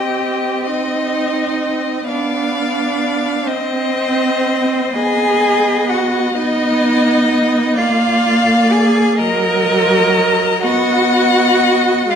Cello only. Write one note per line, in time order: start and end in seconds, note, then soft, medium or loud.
0.00 0.68 G4 medium
0.67 2.08 D#4 medium
2.09 3.48 D4 medium
3.47 4.97 C4 medium
4.96 5.91 G#4 medium
5.90 6.35 F#4 medium
6.36 7.80 D#4 medium
7.78 8.74 F4 medium
8.72 9.21 G#4 medium
9.19 10.62 A#4 medium
10.63 12.11 F#4 loud
12.10 12.15 F4 medium